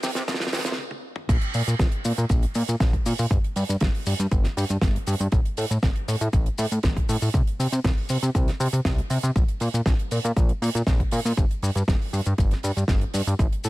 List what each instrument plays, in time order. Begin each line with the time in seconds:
0.03 analog synth bass C3, snare, open hi-hat, shaker
0.15 analog synth bass C3, snare, closed hi-hat, shaker
0.28 analog synth bass C2, kick, snare, closed hi-hat, shaker
0.34 snare
0.40 snare, closed hi-hat
0.47 snare
0.53 analog synth bass C3, kick, snare, open hi-hat, shaker
0.59 snare
0.65 analog synth bass C3, snare, closed hi-hat, shaker
0.72 snare
0.78 high tom
0.91 high tom
1.16 mid tom
1.29 analog synth bass A#1, kick, closed hi-hat, crash, shaker
1.41 closed hi-hat
1.54 analog synth bass A#2, open hi-hat, shaker
1.67 analog synth bass A#2, closed hi-hat, shaker
1.79 analog synth bass A#1, kick, snare, closed hi-hat, shaker
1.92 closed hi-hat
2.05 analog synth bass A#2, open hi-hat, shaker
2.17 analog synth bass A#2, closed hi-hat, shaker
2.29 analog synth bass A#1, kick, closed hi-hat, shaker
2.43 closed hi-hat
2.55 analog synth bass A#2, open hi-hat, shaker
2.68 analog synth bass A#2, closed hi-hat, shaker
2.80 analog synth bass A#1, kick, snare, closed hi-hat, shaker
2.93 kick, closed hi-hat
3.06 analog synth bass A#2, open hi-hat, shaker
3.19 analog synth bass A#2, open hi-hat, shaker
3.31 analog synth bass G1, kick, closed hi-hat, shaker
3.44 closed hi-hat
3.56 analog synth bass G2, open hi-hat, shaker
3.69 analog synth bass G2, closed hi-hat, shaker
3.80 analog synth bass G1, kick, snare, closed hi-hat, shaker
3.95 open hi-hat
4.06 analog synth bass G2, open hi-hat, shaker
4.19 analog synth bass G2, closed hi-hat, shaker
4.31 analog synth bass G1, kick, closed hi-hat, shaker
4.44 snare, closed hi-hat
4.57 analog synth bass G2, open hi-hat, shaker
4.69 analog synth bass G2, closed hi-hat, shaker
4.81 analog synth bass G1, kick, snare, closed hi-hat, shaker
4.96 closed hi-hat
5.07 analog synth bass G2, open hi-hat, shaker
5.20 analog synth bass G2, closed hi-hat, shaker
5.32 analog synth bass A1, kick, closed hi-hat, shaker
5.45 closed hi-hat
5.57 analog synth bass A2, open hi-hat, shaker
5.70 analog synth bass A2, closed hi-hat, shaker
5.83 analog synth bass A1, kick, snare, closed hi-hat, shaker
5.96 closed hi-hat
6.08 analog synth bass A2, open hi-hat, shaker
6.21 analog synth bass A2, closed hi-hat, shaker
6.33 analog synth bass A1, kick, closed hi-hat, shaker
6.46 closed hi-hat
6.58 analog synth bass A2, open hi-hat, shaker
6.71 analog synth bass A2, closed hi-hat, shaker
6.83 analog synth bass A1, kick, snare, closed hi-hat, shaker
6.97 kick, closed hi-hat
7.09 analog synth bass A2, open hi-hat, shaker
7.22 analog synth bass A2, open hi-hat, shaker
7.34 analog synth bass C2, kick, closed hi-hat, shaker
7.47 closed hi-hat
7.59 analog synth bass C3, open hi-hat, shaker
7.72 analog synth bass C3, closed hi-hat, shaker
7.84 analog synth bass C2, kick, snare, closed hi-hat, shaker
7.97 open hi-hat
8.09 analog synth bass C3, open hi-hat, shaker
8.23 analog synth bass C3, closed hi-hat, shaker
8.35 analog synth bass C2, kick, closed hi-hat, shaker
8.48 snare, closed hi-hat
8.60 analog synth bass C3, open hi-hat, shaker
8.73 analog synth bass C3, closed hi-hat, shaker
8.85 analog synth bass C2, kick, snare, closed hi-hat, shaker
8.98 closed hi-hat
9.10 analog synth bass C3, open hi-hat, shaker
9.23 analog synth bass C3, closed hi-hat, shaker
9.36 analog synth bass A#1, kick, closed hi-hat, shaker
9.48 closed hi-hat
9.60 analog synth bass A#2, open hi-hat, shaker
9.74 analog synth bass A#2, closed hi-hat, shaker
9.86 analog synth bass A#1, kick, snare, closed hi-hat, shaker
9.99 closed hi-hat
10.11 analog synth bass A#2, open hi-hat, shaker
10.24 analog synth bass A#2, closed hi-hat, shaker
10.37 analog synth bass A#1, kick, closed hi-hat, shaker
10.49 closed hi-hat
10.62 analog synth bass A#2, open hi-hat, shaker
10.75 analog synth bass A#2, closed hi-hat, shaker
10.87 analog synth bass A#1, kick, snare, closed hi-hat, shaker
11.00 kick, closed hi-hat
11.11 analog synth bass A#2, open hi-hat, shaker
11.25 analog synth bass A#2, open hi-hat, shaker
11.37 analog synth bass G1, kick, closed hi-hat, shaker
11.51 closed hi-hat
11.62 analog synth bass G2, open hi-hat, shaker
11.75 analog synth bass G2, closed hi-hat, shaker
11.88 analog synth bass G1, kick, snare, closed hi-hat, shaker
12.02 open hi-hat
12.13 analog synth bass G2, open hi-hat, shaker
12.25 analog synth bass G2, closed hi-hat, shaker
12.38 analog synth bass G1, kick, closed hi-hat, shaker
12.51 snare, closed hi-hat
12.63 analog synth bass G2, open hi-hat, shaker
12.77 analog synth bass G2, closed hi-hat, shaker
12.88 analog synth bass G1, kick, snare, closed hi-hat, shaker
13.01 closed hi-hat
13.14 analog synth bass G2, open hi-hat, shaker
13.27 analog synth bass G2, closed hi-hat, shaker
13.39 analog synth bass A1, kick, closed hi-hat, shaker
13.52 closed hi-hat
13.64 analog synth bass A2, open hi-hat, shaker